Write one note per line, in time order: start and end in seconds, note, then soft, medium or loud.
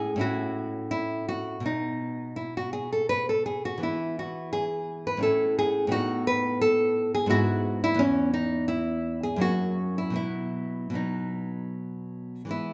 0.00 0.15 A2 medium
0.00 0.16 C#4 medium
0.00 0.18 E4 medium
0.00 0.19 G#4 medium
0.16 1.58 A2 medium
0.16 1.59 C#4 medium
0.16 0.90 E4 medium
0.21 0.89 F#4 medium
0.91 1.26 E4 medium
1.29 1.63 F#4 medium
1.60 3.78 B2 medium
1.60 3.79 B3 soft
1.66 2.35 D#4 medium
2.36 2.55 E4 medium
2.57 2.72 F#4 medium
2.73 2.92 G#4 medium
2.93 3.09 A4 medium
3.09 3.28 B4 medium
3.29 3.45 A4 medium
3.46 3.65 G#4 medium
3.65 3.83 F#4 medium
3.78 5.18 E3 medium
3.78 5.19 B3 soft
3.83 4.18 E4 medium
4.19 4.52 F#4 medium
4.53 5.05 G#4 medium
5.07 5.22 B4 medium
5.17 5.86 A2 medium
5.17 5.88 C#4 medium
5.17 5.90 E4 medium
5.23 5.57 A4 medium
5.59 5.91 G#4 loud
5.87 7.24 A2 medium
5.87 7.25 B3 medium
5.87 7.26 D#4 medium
5.92 6.26 F#4 loud
6.27 6.61 B4 loud
6.62 7.11 A4 loud
7.15 7.29 G#4 loud
7.26 7.94 G#2 medium
7.26 7.94 B3 medium
7.26 7.83 E4 medium
7.30 7.81 F#4 loud
7.84 8.01 E4 loud
7.94 9.35 E2 medium
7.94 9.35 B3 medium
7.99 8.33 C#4 loud
8.34 8.68 D#4 medium
8.68 9.20 E4 loud
9.23 9.41 G#4 medium
9.36 10.12 F#2 medium
9.36 10.13 A#3 medium
9.36 10.14 C#4 medium
9.41 9.95 F#4 loud
9.98 10.14 E4 medium
10.10 10.89 B2 medium
10.10 10.91 F#3 soft
10.10 10.92 B3 soft
10.16 10.92 E4 medium
10.90 12.44 B2 medium
10.90 12.45 F#3 soft
10.90 12.46 B3 soft
10.95 11.71 D#4 medium
12.45 12.73 E3 soft
12.45 12.73 G#3 soft
12.49 12.73 B3 soft
12.49 12.73 E4 medium